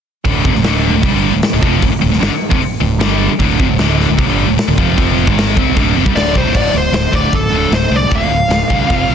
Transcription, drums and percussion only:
0.25 kick, open hi-hat
0.45 kick
0.55 snare
0.64 snare, open hi-hat
1.03 kick, open hi-hat
1.43 snare, open hi-hat
1.63 kick
1.82 kick, open hi-hat
2.13 snare
2.22 snare, open hi-hat
2.51 kick
2.62 open hi-hat
3.01 snare, open hi-hat
3.40 kick, open hi-hat
3.60 kick
3.79 snare, open hi-hat
4.00 snare
4.19 kick, open hi-hat
4.58 snare, open hi-hat
4.78 kick
4.98 kick, open hi-hat
5.27 kick
5.38 snare, open hi-hat
5.57 kick
5.77 kick, open hi-hat
6.06 kick
6.17 snare, open hi-hat
6.35 kick
6.55 kick, crash
6.94 snare, open hi-hat
7.13 kick
7.33 kick, open hi-hat
7.72 snare, open hi-hat
8.12 kick, open hi-hat
8.51 snare, open hi-hat
8.70 kick
8.90 kick, open hi-hat

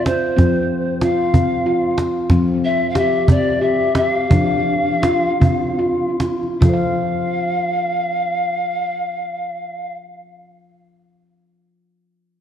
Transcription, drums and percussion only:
0.06 cajon slap
0.39 cajon bass, cajon slap
0.56 cajon slap
1.01 cajon slap
1.20 cajon slap
1.34 cajon bass
1.98 cajon slap
2.29 cajon bass, cajon slap
2.48 cajon slap
2.95 cajon slap
3.13 cajon slap
3.28 cajon bass
3.95 cajon slap
4.31 cajon bass
5.03 cajon slap
5.41 cajon bass
5.63 cajon slap
6.20 cajon slap
6.43 cajon slap
6.62 cajon bass

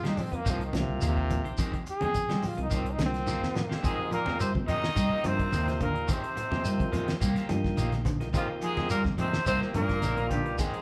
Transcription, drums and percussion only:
0.03 snare, closed hi-hat, high conga
0.17 open hi-hat, low conga, shekere
0.33 closed hi-hat
0.46 kick, closed hi-hat, high conga, shekere
0.61 closed hi-hat
0.73 snare, closed hi-hat, high conga, low conga, shekere
1.01 closed hi-hat, high conga, shekere
1.17 kick
1.30 kick, closed hi-hat, low conga, shekere
1.45 closed hi-hat
1.58 kick, closed hi-hat, high conga, shekere
1.73 kick, closed hi-hat
1.87 closed hi-hat, shekere
2.01 closed hi-hat, high conga
2.14 kick, closed hi-hat, high conga, shekere
2.29 snare, closed hi-hat, high conga
2.42 open hi-hat, low conga, shekere
2.58 closed hi-hat
2.71 kick, snare, closed hi-hat, shekere
2.86 closed hi-hat
2.99 snare, closed hi-hat, high conga, shekere
3.14 snare, closed hi-hat
3.27 snare, high conga, shekere
3.43 snare
3.55 snare, low conga, shekere
3.72 snare
3.84 kick, closed hi-hat, shekere
4.11 closed hi-hat, low conga, shekere
4.26 snare, high conga
4.40 closed hi-hat, high conga, shekere
4.55 kick, high conga
4.68 closed hi-hat, low conga, shekere
4.84 snare
4.96 kick, closed hi-hat, shekere
5.24 closed hi-hat, high conga, shekere
5.39 kick, closed hi-hat
5.52 snare, closed hi-hat, high conga, shekere
5.67 snare, closed hi-hat, high conga
5.80 kick, closed hi-hat, low conga, shekere
5.96 closed hi-hat
6.08 kick, closed hi-hat, shekere
6.24 closed hi-hat
6.37 closed hi-hat, low conga, shekere
6.52 snare, high conga
6.65 closed hi-hat, high conga, shekere
6.79 kick, closed hi-hat, high conga
6.93 closed hi-hat, low conga, shekere
7.08 snare, closed hi-hat
7.21 kick, closed hi-hat, shekere
7.36 snare, closed hi-hat
7.49 snare, closed hi-hat, high conga, shekere
7.64 kick, snare
7.77 closed hi-hat, high conga, shekere
7.92 snare, closed hi-hat, high conga
8.05 kick, snare, closed hi-hat, low conga, shekere
8.21 snare, closed hi-hat
8.34 kick, closed hi-hat, shekere
8.62 closed hi-hat, shekere
8.77 snare, high conga
8.90 closed hi-hat, high conga, shekere
9.04 kick, snare, high conga
9.18 closed hi-hat, low conga, shekere
9.33 snare
9.46 kick, closed hi-hat, shekere
9.62 snare
9.74 closed hi-hat, high conga, low conga, shekere
9.89 kick, snare, closed hi-hat
10.02 closed hi-hat, high conga, shekere
10.17 closed hi-hat, high conga
10.31 kick, closed hi-hat, low conga, shekere
10.46 closed hi-hat
10.59 kick, closed hi-hat, high conga, shekere
10.74 closed hi-hat

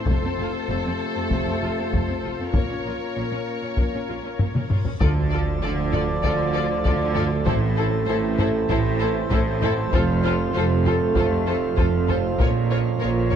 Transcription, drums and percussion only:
0.06 taiko
1.31 taiko
1.93 taiko
2.53 taiko
3.77 taiko
4.39 taiko low-mid
4.55 taiko mid
4.70 taiko low-mid
4.85 taiko low
5.01 taiko
5.93 taiko low-mid
6.23 taiko
6.85 taiko
7.16 taiko low-mid
7.46 taiko
8.39 taiko low-mid
8.69 taiko
9.31 taiko
9.62 taiko low-mid
9.93 taiko
10.85 taiko low-mid
11.15 taiko
11.78 taiko
12.09 taiko low-mid
12.40 taiko
13.31 taiko low-mid

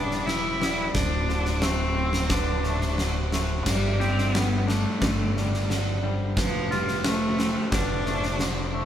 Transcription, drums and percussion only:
0.11 snare
0.28 snare
0.62 snare
0.95 kick, snare
1.29 snare
1.45 snare
1.62 snare
2.13 snare
2.30 kick, snare
2.63 snare
2.81 snare
2.98 snare
3.32 snare
3.66 kick, snare, crash
4.00 snare
4.18 snare
4.35 snare
4.68 snare
5.02 kick, snare
5.37 snare
5.54 snare
5.70 snare
6.37 kick, snare
6.71 snare
6.88 snare
7.04 snare
7.39 snare
7.72 kick, snare
8.06 snare
8.23 snare
8.39 snare

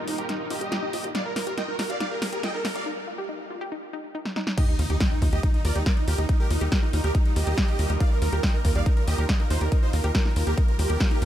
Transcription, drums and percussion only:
0.08 open hi-hat
0.18 closed hi-hat
0.29 snare, closed hi-hat
0.50 open hi-hat
0.61 closed hi-hat
0.72 snare, closed hi-hat
0.93 open hi-hat
1.04 closed hi-hat
1.15 snare, closed hi-hat
1.36 snare, open hi-hat
1.47 closed hi-hat
1.58 snare, closed hi-hat
1.79 snare, open hi-hat
1.90 closed hi-hat
2.00 snare, closed hi-hat
2.22 snare, open hi-hat
2.33 closed hi-hat
2.43 snare, closed hi-hat
2.65 snare, open hi-hat
2.75 closed hi-hat
4.25 snare
4.36 snare
4.47 snare
4.58 kick, closed hi-hat, crash
4.79 open hi-hat
4.90 closed hi-hat
5.00 kick, snare, closed hi-hat
5.22 kick, open hi-hat
5.33 closed hi-hat
5.43 kick, closed hi-hat
5.54 closed hi-hat
5.65 open hi-hat
5.75 closed hi-hat
5.86 kick, snare, closed hi-hat
5.97 closed hi-hat
6.08 open hi-hat
6.18 closed hi-hat
6.29 kick, closed hi-hat
6.51 open hi-hat
6.61 closed hi-hat
6.72 kick, snare, closed hi-hat
6.93 open hi-hat
7.04 closed hi-hat
7.15 kick, closed hi-hat
7.25 closed hi-hat
7.36 open hi-hat
7.47 closed hi-hat
7.58 kick, snare, closed hi-hat
7.68 closed hi-hat
7.79 open hi-hat
7.90 closed hi-hat
8.00 kick, closed hi-hat
8.22 open hi-hat
8.33 closed hi-hat
8.43 kick, snare, closed hi-hat
8.65 kick, open hi-hat
8.75 closed hi-hat
8.86 kick, closed hi-hat
8.97 closed hi-hat
9.08 open hi-hat
9.18 closed hi-hat
9.29 kick, snare, closed hi-hat
9.40 closed hi-hat
9.50 open hi-hat
9.61 closed hi-hat
9.72 kick, closed hi-hat
9.93 open hi-hat
10.04 closed hi-hat
10.15 kick, snare, closed hi-hat
10.26 snare
10.36 open hi-hat
10.47 closed hi-hat
10.58 kick, closed hi-hat
10.68 closed hi-hat
10.79 open hi-hat
10.90 closed hi-hat
11.00 kick, snare, closed hi-hat
11.11 closed hi-hat
11.22 open hi-hat

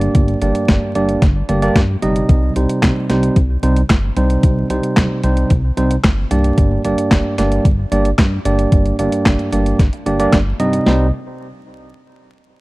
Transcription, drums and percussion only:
0.01 closed hi-hat
0.15 kick, closed hi-hat
0.28 closed hi-hat
0.42 closed hi-hat
0.55 closed hi-hat
0.68 kick, snare, closed hi-hat
0.95 closed hi-hat
1.09 closed hi-hat
1.22 kick, snare, closed hi-hat
1.49 closed hi-hat
1.62 closed hi-hat
1.76 kick, snare, closed hi-hat
2.02 closed hi-hat
2.16 closed hi-hat
2.29 kick, closed hi-hat
2.56 closed hi-hat
2.69 closed hi-hat
2.83 kick, snare, clap, closed hi-hat
3.10 snare, closed hi-hat
3.23 closed hi-hat
3.36 kick, closed hi-hat
3.63 closed hi-hat
3.76 closed hi-hat
3.90 kick, snare, clap, closed hi-hat
4.17 closed hi-hat
4.30 closed hi-hat
4.43 kick, closed hi-hat
4.70 closed hi-hat
4.83 closed hi-hat
4.97 kick, snare, clap, closed hi-hat
5.24 closed hi-hat
5.37 closed hi-hat
5.50 kick, closed hi-hat
5.77 closed hi-hat
5.91 closed hi-hat
6.04 kick, snare, clap, closed hi-hat
6.31 closed hi-hat
6.44 closed hi-hat
6.58 kick, closed hi-hat
6.85 closed hi-hat
6.98 closed hi-hat
7.11 kick, snare, clap, closed hi-hat
7.38 snare, closed hi-hat
7.52 closed hi-hat
7.65 kick, closed hi-hat
7.92 closed hi-hat
8.05 closed hi-hat
8.18 kick, snare, clap, closed hi-hat
8.45 closed hi-hat
8.59 closed hi-hat
8.72 kick, closed hi-hat
8.86 closed hi-hat
8.99 closed hi-hat
9.12 closed hi-hat
9.26 kick, snare, clap, closed hi-hat
9.39 closed hi-hat
9.52 closed hi-hat
9.66 closed hi-hat
9.79 kick, snare, closed hi-hat
9.93 closed hi-hat
10.06 closed hi-hat
10.20 closed hi-hat
10.33 kick, snare, clap, closed hi-hat
10.60 closed hi-hat
10.73 closed hi-hat
10.86 snare

